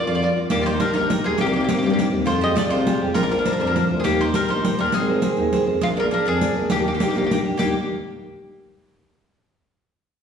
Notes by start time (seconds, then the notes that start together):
Already playing: F4 A#4 D5
0.05 F2 F3 F4 D5
0.15 F4 D5
0.22 F4 A#4 D5
0.36 F4 A#4 D5
0.50 D#2 D#3 A#3 G4, riq
0.61 F4 D5
0.66 D#4 G4 A#4 C5
0.80 D4 D#4 G4 A#4, riq
0.94 A#1 A#3 D#4 A#4, riq
1.10 D#4 G4 A#4, riq
1.24 D#2 C4 D#4 G4 G#4 A#4
1.38 C2 C3 A#3 G4, riq
1.46 A#3 G4
1.53 A#3 C4 D#4 G4
1.60 A#3 G4
1.68 A#3 C4 D#4 G4, riq
1.74 A#3
1.78 G2 G3 G4
1.83 A#3 G4, riq
1.90 A#3 G4
1.98 A#3 C4 D#4 G4, riq
2.11 D#2 A#3 C4 D#4
2.26 F2 F3 F4 C5, riq
2.41 F4 G4 G#4 D#5
2.56 F4 G4 G#4 D5, riq
2.69 C2 C3 F4 C5, riq
2.86 F4 G4 G#4, riq
2.99 F2 F4 G4 G#4
3.14 A#1 A#3 F4 A#4, riq
3.23 D4 A#4
3.31 D4 F4 A#4 C5, riq
3.39 D4 A#4
3.45 D4 F4 A#4 C5, riq
3.53 D4 A#4
3.58 F2 F3 D4 A#4
3.67 D4 A#4
3.75 D4 F4 A#4 C5, riq
3.89 D2 F4 A#4 C5
4.00 D#2 C4 G#4
4.04 D#3 A#3 G4, riq
4.20 D#4 G4 A#4 C5
4.34 D4 D#4 G4 A#4, riq
4.48 A#1 A#3 D#4 C5, riq
4.64 D#4 G4 A#4, riq
4.78 D#2 D4 D#4 G4 A#4
4.92 G#1 G#3 C4 G#4, riq
5.08 G#4 A#4 C5
5.22 G#4 A#4 C5, riq
5.36 D#2 D#3, riq
5.52 G#4 A#4 C5, riq
5.66 F2 G#4 A#4 C5
5.81 A#1 G#3 A#3 F4, riq
5.96 D4 G#4 A#4 D5
6.11 D4 G#4 A#4 D5
6.25 F2 F3 D4 G#4, riq
6.41 G#4 A#4 D5, riq
6.55 A#1 G#4 A#4 D5
6.70 D#2 D#3 A#3 G4, riq
6.79 A#3 G4
6.84 A#3 D4 D#4 G4
6.94 A#3 G4
7.00 A#3 D4 D#4 G4, riq
7.09 A#3 G4
7.14 A#1 A#3 G4, riq
7.24 A#3 G4
7.30 A#3 D4 D#4 G4, riq
7.44 D4 D#4 G4
7.58 D#2 D#3 A#3 D4 D#4 G4, riq